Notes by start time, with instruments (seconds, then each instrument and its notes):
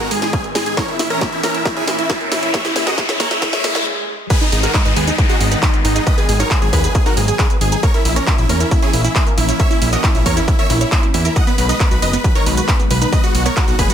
Already playing: analog synth pad G#2 D#3 B3 G#4 D#5, riser
0.00 synth pluck D#4 A#4, supersaw synth F#4 A#4, closed hi-hat
0.11 synth pluck G#3 G#4, supersaw synth G#4, open hi-hat
0.22 synth pluck G#4, supersaw synth G#4, snare, closed hi-hat
0.33 synth pluck G#3 G#4, supersaw synth G#4, kick, closed hi-hat
0.44 synth pluck B4, closed hi-hat
0.55 synth pluck G#3 G#4, supersaw synth G#4, snare, open hi-hat
0.66 synth pluck D#4 G#4, supersaw synth G#4, closed hi-hat
0.77 analog synth pad A#2 E3 C#4 A#4 E5, synth pluck A#3 C#5, supersaw synth A#4 C#5, kick, snare, closed hi-hat
0.88 supersaw synth E4, synth pluck E4 A#4, closed hi-hat
0.99 synth pluck A#3 E4, supersaw synth E4, snare, open hi-hat
1.10 supersaw synth C#4 A#4, synth pluck A#4 C#5, closed hi-hat
1.21 synth pluck A#3 E4, supersaw synth E4, kick, snare, closed hi-hat
1.32 synth pluck E4, supersaw synth E4, closed hi-hat
1.43 synth pluck A#3 A#4, supersaw synth C#4 A#4, snare, open hi-hat
1.54 synth pluck E4 A#4, supersaw synth E4, closed hi-hat
1.65 synth pluck A#3 E4, supersaw synth E4, kick, snare, closed hi-hat
1.76 supersaw synth E4 G#4, synth pluck G#4 C#5, closed hi-hat
1.87 synth pluck A#3 E4, supersaw synth E4, snare, open hi-hat
1.99 synth pluck E4, supersaw synth E4, closed hi-hat
2.10 synth pluck A#3 E4, supersaw synth E4, kick, snare, closed hi-hat
2.21 synth pluck A#4, closed hi-hat
2.32 synth pluck A#3 E4, supersaw synth E4, snare, open hi-hat
2.43 supersaw synth E4, synth pluck E4 C#5, closed hi-hat
2.54 synth pluck A#3 E5, analog synth pad G#4, supersaw synth C#5 E5, kick, snare, closed hi-hat
2.65 synth pluck E4, supersaw synth E4, snare, closed hi-hat
2.76 synth pluck A#3 E4, supersaw synth E4, snare, open hi-hat
2.87 supersaw synth F#4 D#5, synth pluck A#4 D#5, snare, closed hi-hat
2.98 synth pluck A#3 E4, supersaw synth E4, kick, snare, closed hi-hat
3.09 synth pluck E4 C#5, supersaw synth E4, snare, closed hi-hat
3.20 synth pluck A#3 C#5, supersaw synth A#4 C#5, kick, snare, open hi-hat
3.31 synth pluck E4, supersaw synth E4, snare, closed hi-hat
3.42 synth pluck A#3 E4, supersaw synth E4, kick, snare, closed hi-hat, swell
3.53 synth pluck A#4 E5, supersaw synth C#5 E5, snare, closed hi-hat
3.64 synth pluck A#3 E4, supersaw synth E4, snare, open hi-hat
3.75 synth pluck E4 C#5, supersaw synth E4, snare, closed hi-hat
4.30 analog synth pad D#3 G#3 B3, synth pluck G#3 B4, supersaw synth G#4 B4, kick, closed hi-hat, crash, downlifter, shaker
4.41 supersaw synth D#4, synth pluck D#4, closed hi-hat, shaker
4.52 analog synth bass G#1, synth pluck G#3 D#4, supersaw synth D#4, open hi-hat
4.63 supersaw synth F#4 A#4, synth pluck G#4 A#4, closed hi-hat, shaker
4.74 synth pluck G#3 D#4, supersaw synth D#4, kick, clap, closed hi-hat, shaker
4.85 analog synth bass G#1, supersaw synth D#4, synth pluck D#4 B4, closed hi-hat, shaker
4.96 analog synth bass D#2, synth pluck G#3 G#4, supersaw synth B3 G#4, open hi-hat
5.07 synth pluck D#4, supersaw synth D#4, closed hi-hat, shaker
5.18 synth pluck G#3, supersaw synth D#4, kick, closed hi-hat, shaker
5.29 supersaw synth D#4 F#4, synth pluck F#4 G#4, closed hi-hat, shaker
5.40 analog synth bass G#1, synth pluck G#3 D#4, supersaw synth D#4, open hi-hat
5.51 supersaw synth D#4, synth pluck D#4 B4, closed hi-hat, shaker
5.63 synth pluck G#3 D#4, supersaw synth D#4, kick, clap, closed hi-hat, shaker
5.74 synth pluck D#4, closed hi-hat, shaker
5.85 analog synth bass G#1, synth pluck G#3 D#4, supersaw synth D#4, open hi-hat
5.96 supersaw synth D#4, synth pluck D#4 G#4, closed hi-hat, shaker
6.07 analog synth pad F#3, synth pluck G#3 D#5, supersaw synth B4 D#5, kick, closed hi-hat, shaker
6.18 supersaw synth G#4, synth pluck G#4 B4, closed hi-hat, shaker
6.29 analog synth bass G#1, synth pluck G#3 G#4, supersaw synth G#4, open hi-hat
6.40 synth pluck D#4 C#5, supersaw synth A#4 C#5, closed hi-hat, shaker
6.51 synth pluck G#3 G#4, supersaw synth G#4, kick, clap, closed hi-hat, shaker
6.62 analog synth bass G#1, synth pluck G#4, supersaw synth G#4, closed hi-hat, shaker
6.73 analog synth bass D#2, synth pluck G#3 B4, supersaw synth G#4 B4, kick, open hi-hat
6.84 synth pluck G#4 B4, supersaw synth G#4, closed hi-hat, shaker
6.95 synth pluck G#3 G#4, supersaw synth G#4, kick, closed hi-hat, shaker
7.06 synth pluck D#4 A#4, supersaw synth F#4 A#4, closed hi-hat, shaker
7.17 analog synth bass G#1, synth pluck G#3 G#4, supersaw synth G#4, open hi-hat
7.28 synth pluck G#4, supersaw synth G#4, closed hi-hat, shaker
7.39 supersaw synth G#4, kick, clap, closed hi-hat, shaker
7.50 synth pluck B4, closed hi-hat, shaker
7.61 analog synth bass G#1, synth pluck G#3 G#4, supersaw synth G#4, open hi-hat
7.72 synth pluck D#4 G#4, supersaw synth G#4, closed hi-hat, shaker
7.83 analog synth pad E3 A#3 C#4, synth pluck A#3 C#5, supersaw synth A#4 C#5, kick, closed hi-hat, shaker
7.94 supersaw synth E4, synth pluck E4 A#4, closed hi-hat, shaker
8.05 analog synth bass A#1, synth pluck A#3 E4, supersaw synth E4, open hi-hat
8.16 supersaw synth C#4 A#4, synth pluck A#4 C#5, closed hi-hat, shaker
8.27 synth pluck A#3 E4, supersaw synth E4, kick, clap, closed hi-hat, shaker
8.38 analog synth bass A#1, synth pluck E4, supersaw synth E4, closed hi-hat, shaker
8.49 analog synth bass E2, synth pluck A#3 A#4, supersaw synth C#4 A#4, open hi-hat
8.60 supersaw synth E4, synth pluck E4 A#4, closed hi-hat, shaker
8.71 synth pluck A#3 E4, supersaw synth E4, kick, closed hi-hat, shaker
8.82 supersaw synth E4 G#4, synth pluck G#4 C#5, closed hi-hat, shaker
8.93 analog synth bass A#1, synth pluck A#3 E4, supersaw synth E4, open hi-hat
9.04 supersaw synth E4, synth pluck E4, closed hi-hat, shaker
9.15 synth pluck A#3 E4, supersaw synth E4, kick, clap, closed hi-hat, shaker
9.27 synth pluck A#4, closed hi-hat, shaker
9.38 analog synth bass A#1, synth pluck A#3 E4, supersaw synth E4, open hi-hat
9.49 supersaw synth E4, synth pluck E4 C#5, closed hi-hat, shaker
9.60 synth pluck A#3 E5, supersaw synth C#5 E5, kick, closed hi-hat, shaker
9.71 supersaw synth E4, synth pluck E4, closed hi-hat, shaker
9.82 analog synth bass A#1, synth pluck A#3 E4, supersaw synth E4, open hi-hat
9.93 supersaw synth F#4 D#5, synth pluck A#4 D#5, closed hi-hat, shaker
10.04 synth pluck A#3 E4, supersaw synth E4, kick, clap, closed hi-hat, shaker
10.15 analog synth bass A#1, supersaw synth E4, synth pluck E4 C#5, closed hi-hat, shaker
10.26 analog synth bass E2, synth pluck A#3 C#5, supersaw synth A#4 C#5, kick, open hi-hat
10.37 synth pluck E4, supersaw synth E4, closed hi-hat, shaker
10.48 synth pluck A#3 E4, supersaw synth E4, kick, closed hi-hat, shaker
10.59 synth pluck A#4 E5, supersaw synth C#5 E5, closed hi-hat, shaker
10.70 analog synth bass A#1, synth pluck A#3 E4, supersaw synth E4, open hi-hat
10.81 synth pluck E4 C#5, supersaw synth E4, closed hi-hat, shaker
10.92 synth pluck A#3, supersaw synth E4, kick, clap, closed hi-hat, shaker
11.03 synth pluck E4, closed hi-hat, shaker
11.14 analog synth bass E2, synth pluck A#3 E4, supersaw synth E4, open hi-hat
11.25 supersaw synth E4, synth pluck E4 A#4, closed hi-hat, shaker
11.36 analog synth pad D#3 G#3 B3, synth pluck F#3 F#5, supersaw synth D#5 F#5, kick, closed hi-hat, shaker
11.47 synth pluck B3 B4, supersaw synth B4, closed hi-hat, shaker
11.58 analog synth bass B1, synth pluck F#3 B4, supersaw synth B4, open hi-hat
11.69 synth pluck D#4 D#5, supersaw synth B4 D#5, closed hi-hat, shaker
11.80 synth pluck F#3 B4, supersaw synth B4, kick, clap, closed hi-hat, shaker
11.91 analog synth bass B1, synth pluck F#4 B4, supersaw synth B4, closed hi-hat, shaker
12.02 analog synth bass F#1, synth pluck F#3 D#5, supersaw synth B4 D#5, open hi-hat
12.13 synth pluck B3 B4, supersaw synth B4, closed hi-hat, shaker
12.24 synth pluck F#3 B4, supersaw synth B4, kick, closed hi-hat, shaker
12.35 synth pluck D#4 C#5, supersaw synth A#4 C#5, closed hi-hat, shaker
12.46 analog synth bass B1, synth pluck F#3 B4, supersaw synth B4, open hi-hat
12.57 synth pluck F#4 B4, supersaw synth B4, closed hi-hat, shaker
12.68 synth pluck F#3 B4, supersaw synth B4, kick, clap, closed hi-hat, shaker
12.79 synth pluck B3, closed hi-hat, shaker
12.90 analog synth bass B1, synth pluck F#3 B4, supersaw synth B4, open hi-hat
13.02 synth pluck D#4 B4, supersaw synth B4, closed hi-hat, shaker
13.13 synth pluck F#3 D#5, supersaw synth B4 D#5, kick, closed hi-hat, shaker
13.24 synth pluck F#4, supersaw synth F#4, closed hi-hat, shaker
13.35 analog synth bass B1, synth pluck F#3 F#4, supersaw synth F#4, open hi-hat
13.46 synth pluck B3 C#5, supersaw synth A#4 C#5, closed hi-hat, shaker
13.57 synth pluck F#3 F#4, supersaw synth F#4, kick, clap, closed hi-hat, shaker
13.68 analog synth bass B1, synth pluck D#4 F#4, supersaw synth F#4, closed hi-hat, shaker
13.79 analog synth bass F#1, synth pluck F#3 B4, supersaw synth G#4 B4, kick, open hi-hat
13.90 synth pluck F#4, supersaw synth F#4, closed hi-hat, shaker